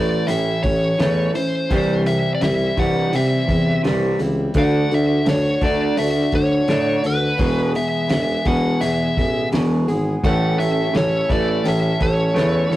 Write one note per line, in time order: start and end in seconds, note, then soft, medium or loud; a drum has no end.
0.00 0.22 A1 medium
0.00 0.26 A2 medium
0.00 0.27 E3 medium
0.00 0.27 A3 soft
0.00 0.27 A3 medium
0.00 0.27 E4 soft
0.00 0.29 D5 medium
0.27 0.57 A1 medium
0.27 0.99 A2 medium
0.27 0.60 A2 medium
0.27 0.96 E3 medium
0.27 0.61 E3 medium
0.27 0.97 A3 medium
0.27 0.98 C#4 medium
0.27 0.98 E4 medium
0.27 0.61 E5 medium
0.27 open hi-hat medium
0.63 0.93 A1 medium
0.63 0.97 A2 medium
0.63 0.97 E3 medium
0.63 1.30 C#5 medium
0.63 kick medium
0.63 open hi-hat soft
0.97 1.27 E2 medium
0.97 1.33 A2 medium
0.97 1.34 E3 soft
0.97 1.33 E3 medium
0.97 1.34 A3 soft
0.97 1.33 A3 medium
0.97 1.34 C#4 medium
0.97 1.32 E4 soft
0.97 snare medium
0.97 open hi-hat medium
1.34 1.66 A2 medium
1.34 1.67 E3 medium
1.34 1.71 A3 soft
1.34 1.71 C#4 soft
1.34 1.70 E4 soft
1.34 2.02 C5 medium
1.34 open hi-hat soft
1.69 2.28 C2 medium
1.69 2.03 C3 medium
1.69 2.42 C3 medium
1.69 2.40 E3 medium
1.69 2.04 E3 medium
1.69 2.41 G3 medium
1.69 2.04 G3 medium
1.69 2.42 C4 medium
1.69 2.42 E4 medium
1.69 kick medium
1.69 open hi-hat medium
2.05 2.38 C3 medium
2.05 2.38 E3 medium
2.05 2.34 E5 medium
2.05 open hi-hat soft
2.35 2.42 D5 medium
2.41 2.70 C2 medium
2.41 2.73 C3 medium
2.41 2.73 E3 medium
2.41 2.77 E3 medium
2.41 2.78 G3 medium
2.41 2.77 C4 medium
2.41 2.76 E4 medium
2.41 2.79 E5 medium
2.41 snare loud
2.41 open hi-hat medium
2.77 3.06 C2 medium
2.77 3.10 C3 medium
2.77 3.11 E3 loud
2.77 3.11 G3 loud
2.77 3.13 G3 soft
2.77 3.13 C4 soft
2.77 3.13 E4 soft
2.77 3.15 F#5 medium
2.77 kick medium
2.77 open hi-hat soft
3.12 3.44 C3 medium
3.12 3.41 C3 medium
3.12 3.84 C3 medium
3.12 3.45 E3 medium
3.12 3.83 E3 medium
3.12 3.84 G3 medium
3.12 3.84 C4 medium
3.12 3.85 E4 medium
3.12 3.81 E5 medium
3.12 open hi-hat medium
3.48 3.77 E2 medium
3.48 3.80 C3 medium
3.48 3.80 E3 medium
3.48 kick medium
3.48 open hi-hat soft
3.83 4.12 C2 medium
3.83 4.17 C3 medium
3.83 4.17 E3 medium
3.83 4.19 E3 soft
3.83 4.17 G3 medium
3.83 4.20 G3 soft
3.83 4.20 C4 medium
3.83 4.17 E4 medium
3.83 snare medium
3.83 open hi-hat soft
4.19 4.48 C#2 medium
4.19 4.51 C3 medium
4.19 4.51 E3 medium
4.19 4.55 G3 soft
4.19 4.55 C4 soft
4.19 4.54 E4 medium
4.19 open hi-hat soft
4.54 4.83 D2 medium
4.54 4.88 D3 medium
4.54 5.24 D3 medium
4.54 5.26 A3 medium
4.54 4.89 A3 medium
4.54 5.25 D4 medium
4.54 4.89 D4 medium
4.54 5.27 F#4 medium
4.54 4.93 F#5 medium
4.54 kick loud
4.54 open hi-hat medium
4.90 5.19 D2 medium
4.90 5.22 D3 medium
4.90 5.22 A3 medium
4.90 open hi-hat soft
4.94 5.28 E5 medium
5.25 5.54 D2 medium
5.25 5.57 D3 medium
5.25 5.61 D3 medium
5.25 5.58 A3 medium
5.25 5.62 A3 medium
5.25 5.61 D4 medium
5.25 5.60 F#4 medium
5.25 snare loud
5.25 open hi-hat medium
5.29 5.64 C#5 medium
5.61 5.90 D2 medium
5.61 5.95 D3 medium
5.61 5.95 A3 medium
5.61 5.96 A3 soft
5.61 5.97 D4 soft
5.61 5.95 D4 medium
5.61 5.97 F#4 soft
5.61 5.98 D5 medium
5.61 kick medium
5.61 open hi-hat soft
5.96 6.25 D2 medium
5.96 6.67 D3 medium
5.96 6.29 D3 medium
5.96 6.68 A3 medium
5.96 6.29 A3 medium
5.96 6.68 D4 medium
5.96 6.68 F#4 medium
5.96 6.34 E5 medium
5.96 open hi-hat medium
6.32 6.61 D2 medium
6.32 6.65 D3 medium
6.32 6.65 A3 medium
6.32 7.07 C#5 medium
6.32 kick medium
6.32 open hi-hat soft
6.68 6.96 A2 medium
6.68 7.01 D3 medium
6.68 7.04 D3 soft
6.68 7.02 A3 medium
6.68 7.04 A3 medium
6.68 7.02 D4 medium
6.68 7.04 D4 soft
6.68 7.03 F#4 medium
6.68 snare medium
6.68 open hi-hat medium
7.03 7.32 D2 medium
7.03 7.35 D3 medium
7.03 7.35 A3 medium
7.03 7.38 A3 soft
7.03 7.39 D4 soft
7.03 7.39 F#4 soft
7.03 7.72 B4 medium
7.03 open hi-hat soft
7.37 7.74 E1 medium
7.37 8.09 E2 medium
7.37 7.72 E2 medium
7.37 8.10 B2 medium
7.37 7.73 B2 medium
7.37 8.07 E3 medium
7.37 7.73 E3 medium
7.37 8.08 G#3 medium
7.37 8.08 B3 medium
7.37 8.10 G#4 medium
7.37 kick medium
7.37 open hi-hat medium
7.75 8.07 E2 medium
7.75 8.07 B2 medium
7.75 8.09 E5 medium
7.75 open hi-hat soft
8.07 8.39 E1 medium
8.07 8.42 E2 medium
8.07 8.42 B2 medium
8.07 8.44 E3 medium
8.07 8.45 G#3 medium
8.07 8.44 B3 medium
8.07 8.44 G#4 medium
8.07 8.47 E5 medium
8.07 snare medium
8.07 open hi-hat medium
8.45 8.74 E1 medium
8.45 8.79 E2 medium
8.45 8.79 B2 medium
8.45 8.80 E3 medium
8.45 8.80 E3 soft
8.45 8.80 G#3 soft
8.45 8.81 B3 soft
8.45 8.80 G#4 soft
8.45 8.79 F#5 medium
8.45 kick medium
8.45 open hi-hat soft
8.80 9.52 E2 medium
8.80 9.13 E2 medium
8.80 9.10 E2 medium
8.80 9.52 B2 medium
8.80 9.13 B2 medium
8.80 9.51 E3 medium
8.80 9.52 G#3 medium
8.80 9.53 B3 medium
8.80 9.52 G#4 medium
8.80 9.48 E5 medium
8.80 open hi-hat medium
9.17 9.45 A1 medium
9.17 9.49 E2 medium
9.17 9.49 B2 medium
9.17 kick medium
9.17 open hi-hat soft
9.52 9.81 E1 medium
9.52 9.85 E2 medium
9.52 9.86 B2 medium
9.52 9.88 E3 soft
9.52 9.86 E3 medium
9.52 9.88 G#3 soft
9.52 9.87 B3 medium
9.52 9.87 G#4 medium
9.52 snare medium
9.52 open hi-hat medium
9.87 10.16 G#1 medium
9.87 10.20 E2 medium
9.87 10.20 B2 medium
9.87 10.23 E3 soft
9.87 10.24 G#3 soft
9.87 10.24 B3 soft
9.87 10.23 G#4 medium
9.87 open hi-hat soft
10.23 10.52 A1 medium
10.23 10.57 A2 medium
10.23 10.95 A2 medium
10.23 12.76 C#3 medium
10.23 10.94 E3 medium
10.23 10.57 E3 medium
10.23 12.76 A3 medium
10.23 10.95 A3 medium
10.23 10.58 A3 medium
10.23 10.96 C#4 medium
10.23 12.76 E4 medium
10.23 12.76 A4 medium
10.23 10.97 A4 medium
10.23 10.57 F#5 medium
10.23 kick loud
10.23 open hi-hat medium
10.59 10.88 A1 medium
10.59 10.91 A2 medium
10.59 10.91 E3 medium
10.59 10.96 E5 medium
10.59 open hi-hat soft
10.93 11.22 A1 medium
10.93 11.26 A2 medium
10.93 11.26 E3 medium
10.93 11.30 E3 medium
10.93 11.29 A3 medium
10.93 11.31 C#4 medium
10.93 11.31 C#5 medium
10.93 snare loud
10.93 open hi-hat medium
10.97 11.28 A4 medium
11.29 11.59 A1 medium
11.29 11.62 A2 medium
11.29 11.63 E3 medium
11.29 11.63 A3 medium
11.29 11.64 A3 soft
11.29 11.64 A4 soft
11.29 11.67 D5 medium
11.29 kick medium
11.29 open hi-hat soft
11.64 11.93 A1 medium
11.64 11.97 A2 medium
11.64 12.36 A2 medium
11.64 11.97 E3 medium
11.64 12.35 E3 medium
11.64 12.36 A3 medium
11.64 12.38 C#4 medium
11.64 12.38 A4 medium
11.64 open hi-hat medium
11.68 12.02 E5 medium
12.00 12.29 A1 medium
12.00 12.32 A2 medium
12.00 12.33 E3 medium
12.00 12.72 C#5 medium
12.00 kick medium
12.00 open hi-hat soft
12.34 12.64 E2 medium
12.34 12.68 A2 medium
12.34 12.69 E3 medium
12.34 12.72 E3 soft
12.34 12.70 A3 medium
12.34 12.72 A3 medium
12.34 12.71 C#4 soft
12.34 snare medium
12.34 open hi-hat medium
12.38 12.70 A4 soft
12.70 12.76 A1 medium
12.70 12.76 A2 medium
12.70 12.76 E3 medium
12.70 12.76 A3 soft
12.70 12.76 C#4 soft
12.70 12.76 A4 soft
12.70 12.76 C#5 medium
12.70 open hi-hat soft